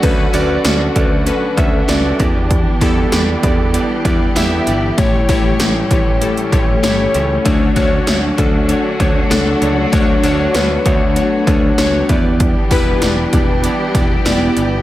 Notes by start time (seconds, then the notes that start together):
Already playing: F#3 A3 C#4 F#4 A4 D5
0.02 D2 D3 C#4 D4 F#4 A4 B4, kick, closed hi-hat
0.33 D2 C#4 F#4 A4 D5, closed hi-hat
0.64 D2 C#4 F#4 A4 D5, snare, closed hi-hat
0.95 D2 C#4 F#4 A4 D5, kick, closed hi-hat
1.26 C#4 F#4 A4 B4, closed hi-hat
1.57 D2 C#4 F#4 A4 E5, kick, closed hi-hat
1.88 C#2 C#4 F#4 A4 D5, snare, closed hi-hat
2.19 E2 E3 G3 B3 E4 G4 D5, kick, closed hi-hat
2.51 kick, closed hi-hat
2.81 E2 B3 E4 G4 A4, kick, closed hi-hat
3.12 E2 B3 E4 G4 D5, snare, closed hi-hat
3.43 E2 B3 E4 G4 D5, kick, closed hi-hat
3.73 B3 E4 G4 D5, closed hi-hat
4.05 E2 B3 E4 G4 D5, kick, closed hi-hat
4.36 E2 B3 E4 G4 E5, snare, closed hi-hat
4.66 G1 B3 E4 G4 D5, closed hi-hat
4.97 A1 A2 G3 A3 C#4 E4 G4 C#5, kick, closed hi-hat
5.29 A1 A3 E4 G4 C#5, kick, closed hi-hat
5.60 A1 A3 E4 G4 C#5, snare, closed hi-hat
5.91 A1 A3 E4 G4 C#5, kick, closed hi-hat
6.21 A3 E4 G4 A4, closed hi-hat
6.37 closed hi-hat
6.52 A1 A3 E4 G4 C#5, kick, closed hi-hat
6.83 G1 A3 E4 G4 C#5, snare, closed hi-hat
7.14 C#2 A3 E4 G4 C#5, closed hi-hat
7.45 D2 D3 F#3 A3 D4 F#4 C#5, kick, closed hi-hat
7.76 D2 A3 D4 F#4 C#5, kick, closed hi-hat
8.07 D2 A3 D4 F#4 C#5, snare, closed hi-hat
8.37 D2 A3 D4 F#4 A4, kick, closed hi-hat
8.68 A3 D4 F#4 C#5, closed hi-hat
8.99 D2 A3 D4 F#4 C#5, kick, closed hi-hat
9.30 C#2 A3 D4 F#4 A4, snare, closed hi-hat
9.61 C#2 A3 D4 F#4 C#5, closed hi-hat
9.92 D2 D3 A3 B3 D4 F#4 C#5, kick, closed hi-hat
10.23 D2 A3 D4 F#4 C#5, closed hi-hat
10.54 D2 A3 D4 F#4 B4, snare, closed hi-hat
10.85 D2 A3 D4 F#4 C#5, kick, closed hi-hat
11.16 A3 D4 F#4 C#5, closed hi-hat
11.47 D2 A3 D4 F#4 C#5, kick, closed hi-hat
11.78 C#2 A3 D4 F#4 C#5, snare, closed hi-hat
12.09 E2 E3 G3 B3 D4 E4 G4 D5, kick, closed hi-hat
12.40 kick, closed hi-hat
12.71 E1 B3 E4 G4 B4, kick, closed hi-hat
13.02 E1 B3 E4 G4 D5, snare, closed hi-hat
13.33 E1 B3 E4 G4 D5, kick, closed hi-hat
13.64 B3 E4 G4 D5, closed hi-hat
13.95 E1 B3 E4 G4 D5, kick, closed hi-hat
14.25 E1 B3 E4 G4 D5, snare, closed hi-hat
14.56 G1 B3 E4 G4 D5, closed hi-hat